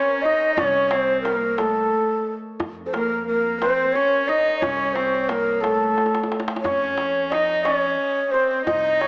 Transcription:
Already playing: cello C#4, santur A#4 C#5, ney C#5
0.22 cello D#4, ney D#5, santur D#5
0.54 upright bass C2, cello C#4, ney C#5, tombak dum
0.59 santur C#5
0.88 cello C4, ney C5, tombak tek
1.21 cello A#3, ney A#4, tombak tek
1.26 santur A#4
1.42 tombak ka
1.58 cello A3, ney A4, santur A4, tombak tek
2.60 upright bass F2, tombak dum
2.86 santur A4, ney C5
2.93 cello A#3, santur A#4, ney A#4, tombak tek
3.27 cello A#3, ney A#4
3.45 tombak ka
3.59 cello C4, ney C5, santur C5, tombak tek
3.92 cello C#4, ney C#5, santur C#5
4.28 cello D#4, ney D#5, santur D#5
4.59 upright bass C2, cello C#4, ney C#5, santur C#5, tombak dum
4.69 santur C#5
4.77 santur C#5
4.85 santur C#5
4.92 cello C4, ney C5, santur C#5, tombak tek
5.00 santur C#5
5.07 santur C#5
5.14 santur C#5
5.24 ney C5
5.29 cello A#3, ney A#4, santur A#4, tombak tek
5.61 cello A3, ney A4, santur A4, tombak tek
5.98 tombak tek
6.06 tombak ka
6.15 tombak tek
6.23 tombak ka
6.32 tombak tek
6.40 tombak ka
6.48 tombak tek
6.56 tombak ka
6.61 upright bass F2, ney C#5, tombak dum
6.65 cello C#4, santur C#5
6.98 tombak tek
7.31 cello D#4, ney D#5, santur D#5, tombak tek
7.49 tombak ka
7.63 cello C#4, ney C#5, santur C#5, tombak tek
8.27 cello C#4
8.31 cello C4, ney C5, santur C5
8.66 upright bass C2, cello D#4, ney D#5, santur D#5, tombak dum
9.01 ney C#5, santur C#5, tombak tek

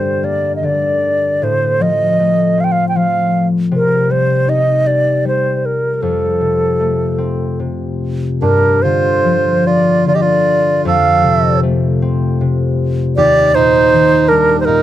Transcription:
Already playing: harp G2 D3 G3 A3, flute C5
0.23 harp A#3, flute D5
0.56 flute D#5
0.63 harp D3, flute D5
1.42 harp A2, flute C5
1.80 harp F3, flute D#5
2.19 harp A3
2.57 harp C4, flute F5
2.64 flute G5
2.72 flute F5
2.89 flute G5
2.96 harp F3, flute F5
3.71 harp C3
3.76 flute A#4
4.09 harp G3, flute C5
4.47 harp D#4, flute D#5
4.87 harp G4, flute D5
5.25 harp G3, flute C5
5.57 flute C5
5.66 flute A#4
5.94 flute A#4
6.02 harp F2, flute A4
6.41 harp C3
6.80 harp A3
7.18 harp C4
7.60 harp C3
8.42 harp G2, melodica D4, flute A#4
8.82 harp D3, melodica F4, flute C5
9.24 harp F3
9.66 harp A#3, melodica F4, flute D5
10.06 harp D3, melodica F4, flute D5
10.14 melodica G4, flute D#5
10.21 melodica F4, flute D5
10.85 harp F2, melodica A4, flute F5
11.23 harp C3
11.63 harp A3
12.02 harp C4
12.41 harp C3
13.17 harp D#2, melodica G4, flute D5
13.54 harp A#2, melodica D#4, flute C5
13.94 harp D#3
14.28 harp G3, melodica D4, flute A#4
14.60 melodica D#4, flute C5
14.65 harp A#2, melodica D#4, flute A#4

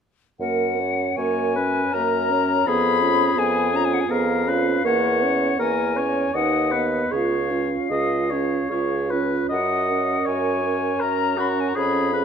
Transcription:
0.39 bassoon F#2, french horn A#3, clarinet A#4, flute F#5
0.77 french horn C#4, clarinet C#5
1.17 bassoon F#2, french horn A#3, clarinet A#4, oboe C#5, flute G#5
1.55 french horn C#4, oboe B4, clarinet C#5
1.92 bassoon F#2, french horn A#3, oboe A#4, clarinet A#4, flute A#5
2.30 french horn C#4, clarinet C#5
2.66 bassoon F2, french horn B3, oboe G#4, clarinet G#4, flute B5
3.01 french horn C#4, clarinet F4
3.36 bassoon F2, french horn B3, clarinet G#4, flute G#5
3.72 french horn C#4, clarinet F4, flute A#5
3.84 flute G#5
3.93 flute F#5
4.00 flute G#5
4.08 bassoon F2, french horn B3, clarinet G#4, oboe A#4, flute F5
4.47 french horn C#4, clarinet F4, oboe B4
4.84 bassoon E2, french horn A#3, clarinet A#4, oboe C#5, flute F#5
5.22 french horn C#4, clarinet C#5
5.58 bassoon E2, french horn A#3, clarinet A#4, oboe A#4, flute G#5
5.95 french horn C#4, clarinet C#5, oboe C#5
6.34 bassoon D#2, french horn D#4, clarinet B4, oboe D#5, flute F#5
6.71 french horn B3, oboe B4, clarinet D#5
7.10 bassoon C#2, french horn F4, clarinet G#4, oboe C#5, flute F5
7.50 french horn C#4, clarinet F4
7.90 bassoon C#2, french horn F4, clarinet G#4, oboe D#5
8.30 french horn C#4, clarinet F4, oboe C#5
8.69 bassoon C#2, french horn F4, clarinet G#4, oboe C#5
9.09 french horn C#4, clarinet F4, oboe B4
9.49 bassoon F#2, oboe D#5, flute F#5
9.88 french horn C#4, clarinet A#4
10.26 bassoon F#2, oboe C#5, flute G#5
10.64 french horn C#4, clarinet A#4
11.00 bassoon F#2, oboe A#4, flute A#5
11.37 french horn C#4, oboe F#4, clarinet A#4, flute B5
11.49 flute A#5
11.60 flute G#5
11.68 flute A#5
11.75 bassoon F2, french horn C#4, oboe G#4, clarinet G#4, flute B5
12.13 french horn C#4, clarinet G#4, oboe B4

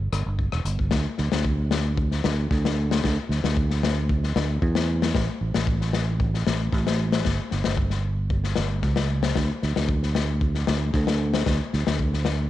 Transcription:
0.12 fingered electric bass G1, cross-stick, closed hi-hat
0.26 fingered electric bass G1
0.39 kick
0.52 fingered electric bass E1, cross-stick
0.65 fingered electric bass G1, closed hi-hat
0.79 kick
0.91 fingered electric bass D2, kick, snare
1.18 fingered electric bass D2, snare
1.32 fingered electric bass D2, snare
1.45 kick
1.71 snare
1.97 kick
2.11 snare
2.24 fingered electric bass D2, snare
2.51 fingered electric bass D2, kick, snare
2.65 snare
2.91 snare
3.04 fingered electric bass D2, kick, snare
3.29 fingered electric bass D2, snare
3.44 fingered electric bass D2, snare
3.57 kick
3.70 snare
3.83 snare
4.09 kick
4.24 snare
4.36 fingered electric bass D2, snare
4.62 fingered electric bass E2, kick
4.75 snare
5.02 snare
5.15 fingered electric bass A1, kick, snare
5.41 fingered electric bass A1
5.54 fingered electric bass A1, snare
5.67 kick
5.81 snare
5.93 snare
6.20 kick
6.34 snare
6.47 fingered electric bass A1, snare
6.72 fingered electric bass A1, kick, snare
6.87 snare
7.12 snare
7.25 fingered electric bass G1, kick, snare
7.51 fingered electric bass G1, snare
7.64 fingered electric bass G1, snare
7.77 kick
7.90 snare
8.30 kick
8.44 snare
8.56 fingered electric bass G1, snare
8.82 fingered electric bass C#2, kick, snare
8.96 snare
9.23 snare
9.36 fingered electric bass D2, kick, snare
9.62 fingered electric bass D2, snare
9.76 fingered electric bass D2, snare
9.89 kick
10.03 snare
10.15 snare
10.41 kick
10.55 snare
10.67 fingered electric bass D2, snare
10.93 fingered electric bass D2, kick, snare
11.07 snare
11.34 snare
11.46 fingered electric bass D2, kick, snare
11.73 fingered electric bass D2, snare
11.87 fingered electric bass D2, snare
11.99 kick
12.14 snare
12.25 snare

